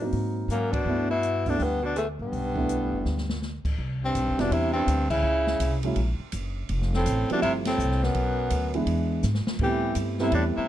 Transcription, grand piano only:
0.01 F#3 A#3 C4 D#4
0.87 A3 B3 D4 E4
1.47 A3 B3 D4 E4
2.55 A3 B3 D4 E4
4.37 G3 B3 C4 D4 E4
5.83 F#3 G#3 A#3 C#4 E4
7.30 F3 G3 A3 C4 E4
8.75 E3 G#3 B3 D4 E4
9.61 G3 A3 B3 C4 E4
10.20 G3 A3 B3 C4 E4

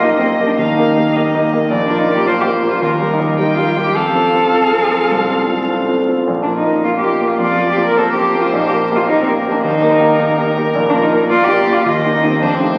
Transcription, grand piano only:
Already playing: A#1 A#3 G4 A#4
0.02 A#3 G4 A#4
0.21 A#3 G4 A#4
0.39 A#3 G4 A#4
0.58 D#2
0.78 A#3 G4 A#4
0.97 A#3 G4 A#4
1.16 A#3 G4 A#4
1.35 A#3 G4 A#4
1.53 A#3 G4 A#4
1.71 A#1
1.89 A#3 F4 A#4
2.08 A#3 F4 A#4
2.26 A#3 F4 A#4
2.44 A#3 F4 A#4
2.63 A#3 F4 A#4
2.82 D#2
3.00 G3 G4 A#4
3.20 G3 G4 A#4
3.38 G3 G4 A#4
3.58 G3 G4 A#4
3.77 G3 G4 A#4
3.96 F2
4.15 C4 F4 A4
4.34 C4 F4 A4
4.53 C4 F4 A4
4.73 C4 F4 A4
4.92 C4 F4 A4
5.11 C2
5.30 C4 F4 A4
5.49 C4 F4 A4
5.68 C4 F4 A4
5.89 C4 F4 A4
6.08 C4 F4 A4
6.27 A#1
6.46 A#3 F4 A#4
6.65 A#3 F4 A#4
6.84 A#3 F4 A#4
7.02 A#3 F4 A#4
7.21 A#3 F4 A#4
7.39 F2
7.58 A#3 F4 A#4
7.77 A#3 F4 A#4
7.97 A#3 F4 A#4
8.16 A#3 F4 A#4
8.35 A#3 F4 A#4
8.53 A#1
8.72 A#3 G4 A#4
8.91 A#3 G4 A#4
9.09 A#3 G4 A#4
9.28 A#3 G4 A#4
9.46 A#3 G4 A#4
9.64 D#2
9.82 A#3 G4 A#4
10.00 A#3 G4 A#4
10.19 A#3 G4 A#4
10.38 A#3 G4 A#4
10.56 A#3 G4 A#4
10.75 A#1
10.93 A#3 F4 A#4
11.12 A#3 F4 A#4
11.30 A#3 F4 A#4
11.48 A#3 F4 A#4
11.67 A#3 F4 A#4
11.86 D#2
12.05 A#3 D#4 G4
12.23 A#3 D#4 G4
12.42 F2
12.61 A3 D#4 G4

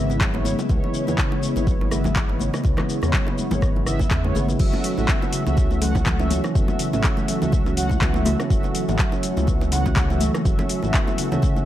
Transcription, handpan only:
0.10 B3
0.20 F#3
0.45 G#3
0.59 G#3
0.83 E3
0.94 C#3
1.18 C#3
1.32 G#3
1.43 C#3
1.56 B3
1.67 F#3
1.92 G#3
2.05 G#3
2.29 E3
2.40 C#3
2.65 C#3
2.78 G#3
2.89 C#3
3.03 B3
3.13 F#3
3.38 G#3
3.52 G#3
3.75 E3
3.87 C#3
4.11 C#3
4.25 G#3
4.35 C#3
4.48 B3
4.59 F#3
4.73 C#4
4.84 F#3
4.97 E4
5.08 B3
5.33 C#3
5.47 C#4
5.71 A3
5.82 F#3
6.06 F#3
6.20 C#4
6.31 F#3
6.45 E4
6.55 B3
6.80 C#3
6.94 C#4
7.17 A3
7.29 F#3
7.53 F#3
7.67 C#4
7.77 F#3
7.90 E4
8.01 B3
8.26 C#3
8.39 C#4
8.64 A3
8.75 F#3
8.99 F#3
9.13 C#4
9.23 F#3
9.37 E4
9.48 B3
9.72 C#3
9.85 C#4
10.10 A3
10.21 F#3
10.45 F#3
10.59 C#4
10.70 F#3
10.83 E4
10.94 B3
11.18 C#3
11.32 C#4
11.56 A3

